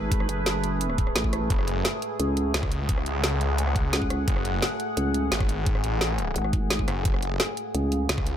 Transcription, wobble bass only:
Already playing: G#1
0.29 F#1
1.16 A1
2.20 C#2
3.93 C#2
4.97 C#2
6.36 G#1
7.75 C#2

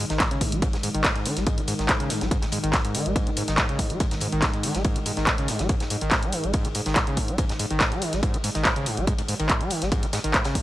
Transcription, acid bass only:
0.10 D#3
0.20 G#2
0.31 C#3
0.41 G#2
0.52 G#3
0.62 G#2
0.73 G#2
0.83 G#2
0.94 D#3
1.05 G#2
1.16 G#2
1.26 D#3
1.37 G#3
1.47 G#2
1.58 G#3
1.68 G#2
1.79 D#3
1.89 G#2
2.00 C#3
2.10 G#2
2.21 G#3
2.31 G#2
2.42 G#2
2.52 G#2
2.63 D#3
2.73 G#2
2.85 G#2
2.95 D#3
3.06 G#3
3.16 G#2
3.27 G#3
3.37 G#2
3.48 D#3
3.58 G#2
3.69 C#3
3.79 G#2
3.90 G#3
4.00 G#2
4.11 G#2
4.21 G#2
4.33 D#3
4.43 G#2
4.54 G#2
4.64 D#3
4.75 G#3
4.85 G#2
4.96 G#3
5.06 G#2
5.17 D#3
5.27 G#2
5.38 C#3
5.48 G#2
5.59 G#3
5.69 G#2
5.81 G#2
5.91 G#2
6.02 D#3
6.12 G#2
6.23 G#3
6.33 D#3
6.44 G#3
6.54 G#2
6.65 G#3
6.75 G#2
6.86 D#3
6.96 G#2
7.07 C#3
7.17 G#2
7.28 G#3
7.39 G#2
7.50 G#2
7.60 G#2
7.71 D#3
7.81 G#2
7.92 G#3
8.02 D#3
8.13 G#3
8.23 G#2
8.34 G#3
8.44 G#2
8.55 D#3
8.65 G#2
8.76 C#3
8.86 G#2
8.97 G#3
9.07 G#2
9.18 G#2
9.29 G#2
9.40 D#3
9.50 G#2
9.61 G#3
9.71 D#3
9.82 G#3
9.92 G#2
10.03 G#3
10.13 G#2
10.24 D#3
10.34 G#2
10.45 C#3
10.55 G#2

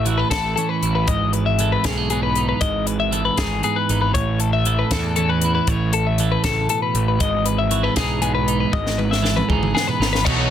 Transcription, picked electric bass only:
Already playing: A1
0.31 A1
0.83 A1
1.08 G#1
1.85 B1
2.61 G#1
3.38 G#1
3.89 G#1
4.15 A1
4.92 E2
5.68 A1
6.44 A1
6.94 A1
7.20 G#1
7.97 B1
8.73 G#1
9.50 G#1
10.00 G#1
10.26 B1

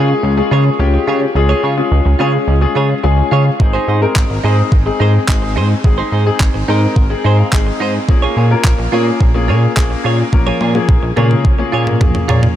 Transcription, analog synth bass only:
Already playing: C#3
0.23 C#2
0.51 C#3
0.79 C#2
1.07 C#3
1.35 C#2
1.63 C#3
1.92 C#2
2.06 C#2
2.20 C#3
2.48 C#2
2.76 C#3
3.04 C#2
3.32 C#3
3.60 G#1
3.88 G#2
4.16 G#1
4.30 G#1
4.44 G#2
4.72 G#1
5.00 G#2
5.28 G#1
5.56 G#2
5.84 G#1
6.12 G#2
6.40 G#1
6.55 G#1
6.69 G#2
6.96 G#1
7.25 G#2
7.53 G#1
7.81 G#2
8.09 A#1
8.37 A#2
8.64 A#1
8.79 A#1
8.93 A#2
9.20 A#1
9.49 A#2
9.77 A#1
10.05 A#2
10.33 A#1
10.61 A#2
10.89 A#1
11.03 A#1
11.17 A#2
11.45 A#1
11.73 A#2
12.01 A#1
12.29 A#2

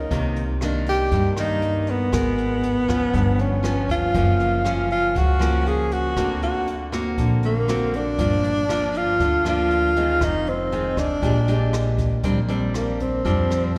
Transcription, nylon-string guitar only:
0.11 C3 D#3 A#3
0.62 D#3 A#3 D4
1.12 G2
1.38 D#3 A#3
2.12 G#3 B3 F#4 A#4
2.88 F3 B3 C#4
3.13 G2
3.63 F3 B3 C#4
4.14 F#2 F3 A#3 C#4
4.65 F3 A#3 C#4
5.15 C#3
5.39 F3 A#3 C#4
6.17 D3 A#3 C4 F#4
6.92 A#3 C4 F#4
7.18 D3
7.69 A#3 C4 F#4
8.19 G2 F3 A#3 D4
8.70 F3 A#3 D4
9.21 D3
9.45 F3 A#3 D4
9.97 D#3 G#3 C4
10.22 F2
10.72 D#3 G#3 C4
11.22 A#2 G#3 D4 G4
11.48 G#3 D4 G4
12.23 A#2 G3 C4 D4
12.48 G3 C4 D4
13.25 F3 G3 C4 D4

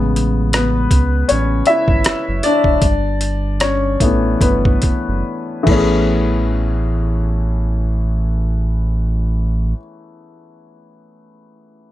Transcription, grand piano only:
Already playing: C#3 G#3 B3
0.54 B3 B4
1.28 C#4 C#5
1.67 E4 E5
2.44 D4 D5
3.61 C#4 C#5
4.01 E3 A3 B3
4.41 B3 B4
5.63 E3 A3
5.68 B3 C#4
5.73 G#4

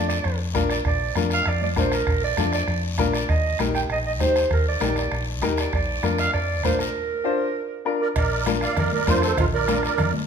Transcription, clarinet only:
0.09 D5
0.71 D5
0.87 D5
1.34 F5
1.48 D5
1.63 D5
1.80 C5
1.94 A#4
2.24 D5
2.54 D5
3.14 D5
3.30 D#5
3.75 G5
3.92 D#5
4.06 D#5
4.22 C5
4.53 A#4
4.68 D5
4.98 D5
5.61 D5
5.75 D5
6.20 F5
6.33 D5
6.65 C5
6.80 A#4
8.01 A#4
8.18 A#4
8.63 D5
8.79 A#4
8.94 A#4
9.09 F4
9.25 A4
9.40 F4
9.55 A#4
9.86 A#4

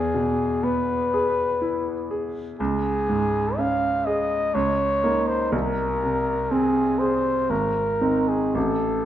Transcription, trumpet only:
Already playing: G#4
0.63 B4
2.59 G#4
3.57 F5
4.05 D#5
4.55 C#5
5.28 C5
5.54 A#4
6.52 G#4
6.99 C5
7.50 A#4
8.28 G#4
8.56 A4

